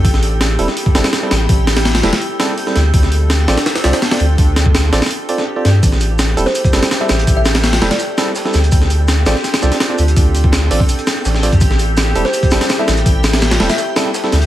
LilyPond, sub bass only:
\new Staff \with { instrumentName = "Sub bass" } { \clef bass \time 4/4 \key a \minor \tempo 4 = 166 a,,4. e,,16 r8. g,,16 r8. a,,8 | a,,4. e,,16 r4. r16 d,8 | d,4. a,,16 r8. c,16 r8. d,8 | d,4. a,,16 r4. r16 g,8 |
a,,4. e,,16 r8. g,,16 r8. a,,8 | a,,4. e,,16 r4. r16 d,8 | d,4. a,,16 r8. c,16 r8. d,8 | d,4. a,,16 r4 r16 a,,8. f,16 |
a,,4. e,,16 r8. g,,16 r8. a,,8 | a,,4. e,,16 r4. r16 d,8 | }